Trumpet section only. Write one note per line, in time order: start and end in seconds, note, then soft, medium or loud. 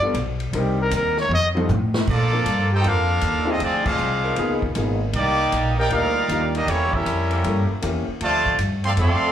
2.10 2.68 A#3 medium
2.10 2.68 F4 medium
2.10 2.68 A4 medium
2.10 2.68 D5 loud
2.74 2.86 D#4 medium
2.74 2.86 A4 medium
2.74 2.86 C5 loud
2.74 2.86 G5 loud
2.87 3.49 D4 medium
2.87 3.48 A4 medium
2.87 3.49 A#4 medium
2.87 3.49 F5 loud
3.49 3.61 C4 medium
3.49 3.62 F4 medium
3.49 3.62 A4 medium
3.49 3.62 D#5 medium
3.63 3.85 C4 medium
3.63 3.85 F4 medium
3.63 3.85 G#4 medium
3.63 3.85 D5 loud
3.87 4.38 D4 medium
3.87 4.63 G#4 medium
3.87 4.38 C5 medium
3.87 4.63 F5 medium
5.15 5.74 A#3 loud
5.15 5.74 D#4 loud
5.15 5.74 G4 loud
5.15 5.74 D5 loud
5.78 5.90 D#4 loud
5.78 5.90 A#4 loud
5.78 5.91 D5 medium
5.78 5.91 G5 loud
5.92 6.50 D#4 medium
5.92 6.50 A#4 medium
5.92 6.51 D5 medium
5.92 6.51 F5 loud
6.55 6.68 A#3 medium
6.55 6.68 D4 medium
6.55 6.68 G4 medium
6.55 6.68 D#5 medium
6.69 6.94 A#3 medium
6.69 6.93 E4 medium
6.69 6.94 G4 medium
6.69 6.94 C#5 loud
6.95 7.70 C#4 medium
6.95 7.70 G4 medium
6.95 7.70 A#4 medium
6.95 7.70 E5 medium
8.22 8.57 F4 loud
8.22 8.57 C5 medium
8.22 8.57 D5 loud
8.22 8.57 A5 loud
8.86 8.91 A4 medium
8.86 8.92 D5 medium
8.86 8.92 F5 medium
8.86 8.91 C6 loud
8.99 9.32 A4 medium
8.99 9.32 D5 medium
8.99 9.32 F5 medium
8.99 9.32 C6 loud